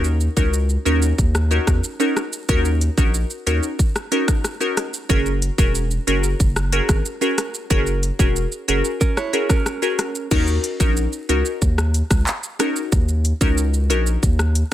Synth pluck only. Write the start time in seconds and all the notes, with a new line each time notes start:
0.37 C#4 D#4 F#4 A#4
0.85 C#4 D#4 F#4 A#4
1.51 C#4 D#4 F#4 A#4
2.00 C#4 D#4 F#4 A#4
2.49 C#4 D#4 F#4 A#4
2.98 C#4 D#4 F#4 A#4
3.47 C#4 D#4 F#4 A#4
4.12 C#4 D#4 F#4 A#4
4.60 C#4 D#4 F#4 A#4
5.09 C#4 F#4 G#4 A#4
5.58 C#4 F#4 G#4 A#4
6.07 C#4 F#4 G#4 A#4
6.72 C#4 F#4 G#4 A#4
7.21 C#4 F#4 G#4 A#4
7.70 C#4 F#4 G#4 A#4
8.19 C#4 F#4 G#4 A#4
8.68 C#4 F#4 G#4 A#4
9.33 C#4 F#4 G#4 A#4
9.82 C#4 F#4 G#4 A#4
10.31 C#4 D#4 F#4 A#4
10.80 C#4 D#4 F#4 A#4
11.29 C#4 D#4 F#4 A#4
12.59 C#4 D#4 F#4 A#4
13.41 C#4 D#4 F#4 A#4
13.90 C#4 D#4 F#4 A#4